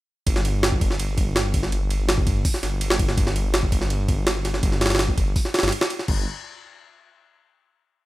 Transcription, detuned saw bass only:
0, 0, Header, 1, 2, 480
1, 0, Start_track
1, 0, Tempo, 363636
1, 352, Time_signature, 4, 2, 24, 8
1, 10634, End_track
2, 0, Start_track
2, 0, Title_t, "Detuned saw bass"
2, 0, Program_c, 0, 39
2, 351, Note_on_c, 0, 31, 103
2, 1053, Note_off_c, 0, 31, 0
2, 1073, Note_on_c, 0, 31, 101
2, 1289, Note_off_c, 0, 31, 0
2, 1314, Note_on_c, 0, 31, 80
2, 2254, Note_off_c, 0, 31, 0
2, 2273, Note_on_c, 0, 31, 103
2, 2974, Note_off_c, 0, 31, 0
2, 2993, Note_on_c, 0, 31, 95
2, 3209, Note_off_c, 0, 31, 0
2, 3471, Note_on_c, 0, 31, 92
2, 4173, Note_off_c, 0, 31, 0
2, 4191, Note_on_c, 0, 31, 104
2, 4893, Note_off_c, 0, 31, 0
2, 4911, Note_on_c, 0, 31, 100
2, 5128, Note_off_c, 0, 31, 0
2, 5150, Note_on_c, 0, 31, 82
2, 6092, Note_off_c, 0, 31, 0
2, 6112, Note_on_c, 0, 31, 105
2, 6813, Note_off_c, 0, 31, 0
2, 6832, Note_on_c, 0, 31, 103
2, 7048, Note_off_c, 0, 31, 0
2, 7428, Note_on_c, 0, 31, 88
2, 7538, Note_off_c, 0, 31, 0
2, 8030, Note_on_c, 0, 31, 98
2, 8254, Note_off_c, 0, 31, 0
2, 10634, End_track
0, 0, End_of_file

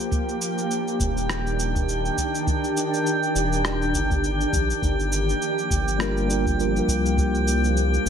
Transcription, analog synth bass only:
0, 0, Header, 1, 2, 480
1, 0, Start_track
1, 0, Tempo, 588235
1, 95, Time_signature, 4, 2, 24, 8
1, 6602, End_track
2, 0, Start_track
2, 0, Title_t, "Analog synth bass"
2, 0, Program_c, 0, 38
2, 815, Note_on_c, 0, 27, 84
2, 1714, Note_off_c, 0, 27, 0
2, 2736, Note_on_c, 0, 27, 82
2, 3215, Note_on_c, 0, 31, 97
2, 3227, Note_off_c, 0, 27, 0
2, 3634, Note_off_c, 0, 31, 0
2, 3695, Note_on_c, 0, 34, 82
2, 3859, Note_off_c, 0, 34, 0
2, 3935, Note_on_c, 0, 31, 103
2, 4355, Note_off_c, 0, 31, 0
2, 4655, Note_on_c, 0, 31, 85
2, 5554, Note_off_c, 0, 31, 0
2, 5614, Note_on_c, 0, 36, 93
2, 6514, Note_off_c, 0, 36, 0
2, 6574, Note_on_c, 0, 31, 87
2, 6602, Note_off_c, 0, 31, 0
2, 6602, End_track
0, 0, End_of_file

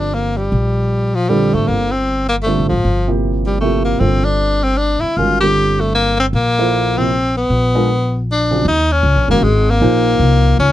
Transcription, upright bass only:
0, 0, Header, 1, 3, 480
1, 0, Start_track
1, 0, Tempo, 387097
1, 649, Time_signature, 3, 2, 24, 8
1, 13295, End_track
2, 0, Start_track
2, 0, Title_t, "Upright bass"
2, 0, Program_c, 0, 32
2, 0, Note_on_c, 0, 31, 68
2, 593, Note_off_c, 0, 31, 0
2, 644, Note_on_c, 0, 34, 67
2, 1861, Note_off_c, 0, 34, 0
2, 1910, Note_on_c, 0, 32, 54
2, 2075, Note_off_c, 0, 32, 0
2, 2088, Note_on_c, 0, 31, 68
2, 3159, Note_off_c, 0, 31, 0
2, 3207, Note_on_c, 0, 33, 45
2, 3357, Note_off_c, 0, 33, 0
2, 3369, Note_on_c, 0, 32, 54
2, 3518, Note_off_c, 0, 32, 0
2, 3531, Note_on_c, 0, 31, 65
2, 4920, Note_off_c, 0, 31, 0
2, 4963, Note_on_c, 0, 31, 66
2, 6181, Note_off_c, 0, 31, 0
2, 6408, Note_on_c, 0, 31, 68
2, 7799, Note_off_c, 0, 31, 0
2, 7848, Note_on_c, 0, 34, 67
2, 9240, Note_off_c, 0, 34, 0
2, 9298, Note_on_c, 0, 34, 69
2, 10685, Note_off_c, 0, 34, 0
2, 10727, Note_on_c, 0, 39, 76
2, 11192, Note_off_c, 0, 39, 0
2, 11199, Note_on_c, 0, 37, 75
2, 11351, Note_off_c, 0, 37, 0
2, 11351, Note_on_c, 0, 34, 49
2, 11503, Note_off_c, 0, 34, 0
2, 11510, Note_on_c, 0, 30, 57
2, 11663, Note_off_c, 0, 30, 0
2, 11670, Note_on_c, 0, 32, 71
2, 12146, Note_off_c, 0, 32, 0
2, 12169, Note_on_c, 0, 34, 71
2, 12635, Note_off_c, 0, 34, 0
2, 12642, Note_on_c, 0, 36, 74
2, 13111, Note_off_c, 0, 36, 0
2, 13130, Note_on_c, 0, 37, 76
2, 13295, Note_off_c, 0, 37, 0
2, 13295, End_track
3, 0, Start_track
3, 0, Title_t, "Muted upright bass strokes"
3, 6230, Note_on_c, 9, 29, 33
3, 6354, Note_off_c, 9, 29, 0
3, 13295, End_track
0, 0, End_of_file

